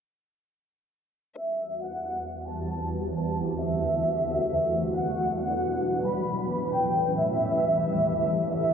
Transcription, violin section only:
1.37 E5
1.82 F#5
2.49 A5
3.16 A5
3.61 E5
4.95 F#5
5.40 F#5
6.07 B5
6.74 G5
7.19 E5
8.53 E5

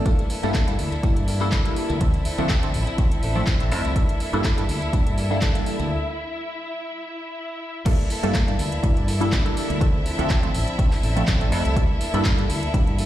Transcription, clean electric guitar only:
0.05 E3 A#3 D4 A4
0.29 E3 A#3 D4 A4
0.54 E3 A#3 D4 A4
0.78 E3 A#3 D4 A4
0.91 A#3 D4 A4
1.16 A#3 D4 A4
1.27 E3 A#3 D4 A4
1.51 E3 A#3 D4 A4
1.76 E3 A#3 D4 A4
2.00 F3 C4 D4 A4
2.25 F3 C4 D4 A4
2.49 F3 C4 D4 A4
2.73 F3 C4 D4 A4
2.86 C4 D4 A4
3.11 C4 D4 A4
3.22 F3 C4 D4 A4
3.47 F3 C4 D4 A4
3.71 F3 C4 D4 A4
3.96 E3 A#3 D4 A4
4.20 E3 A#3 D4 A4
4.44 E3 A#3 D4 A4
4.69 E3 A#3 D4 A4
4.82 A#3 D4 A4
5.06 A#3 D4 A4
5.17 E3 A#3 D4 A4
5.42 E3 A#3 D4 A4
5.66 E3 A#3 D4 A4
7.86 E3 A#3 D4 A4
8.09 E3 A#3 D4 A4
8.34 E3 A#3 D4 A4
8.58 E3 A#3 D4 A4
8.96 A#3 D4 A4
9.07 E3 A#3 D4 A4
9.21 A#3 D4 A4
9.32 E3 A#3 D4 A4
9.56 E3 A#3 D4 A4
9.69 A#3 D4 A4
9.81 F3 C4 D4 A4
10.05 F3 C4 D4 A4
10.29 F3 C4 A4
10.54 F3 C4 D4 A4
10.91 C4 D4 A4
11.02 F3 C4 D4 A4
11.16 C4 D4 A4
11.27 F3 C4 D4 A4
11.51 F3 C4 D4 A4
11.65 C4 D4 A4
11.76 E3 A#3 D4 A4
12.00 E3 A#3 D4 A4
12.24 E3 A#3
12.49 E3 A#3 D4 A4
12.86 A#3 D4 A4
12.98 E3 A#3 D4 A4

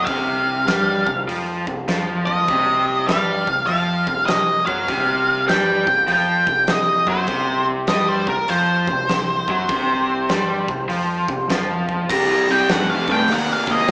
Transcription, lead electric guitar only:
0.04 F5
2.26 D#5
3.08 F5
3.67 F5
4.26 D#5
4.66 F5
5.48 G5
6.12 G5
6.70 D#5
7.10 C5
7.88 D#5
8.09 C5
8.29 A#4
8.49 C5
12.10 A#5
12.51 G5
12.72 F#5
12.90 F5
13.11 G5
13.33 F#5
13.53 F5
13.71 D#5

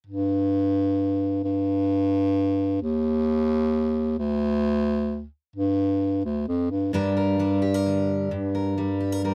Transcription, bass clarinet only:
0.07 G2
1.44 G2
2.82 D#2
4.19 D2
5.56 G2
6.25 D2
6.48 F2
6.71 G2
6.93 G2
8.32 G2

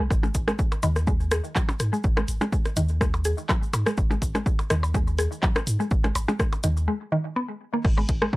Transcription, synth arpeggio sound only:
0.23 G#3
0.48 G#3
0.83 D#3
1.07 G#3
1.32 G#4
1.56 F#3
1.93 G#3
2.17 G#3
2.41 G#3
2.77 D#3
3.01 G#3
3.25 G#4
3.49 F#3
3.87 G#3
4.11 G#3
4.35 G#3
4.70 D#3
4.95 G#3
5.19 G#4
5.43 F#3
5.80 G#3
6.04 G#3
6.28 G#3
6.64 D#3
6.88 G#3
7.12 D#3
7.36 B3
7.74 A#3
7.98 G#3
8.22 G#3

